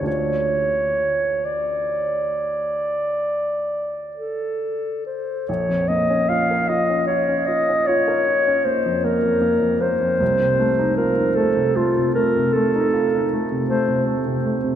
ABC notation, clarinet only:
X:1
M:12/8
L:1/8
Q:3/8=50
K:Dm
V:1 name="Clarinet"
^c3 d6 A2 =c | [K:Bbm] d e f e d e d2 c B2 c- | c2 B =A F B A2 z c z2 |]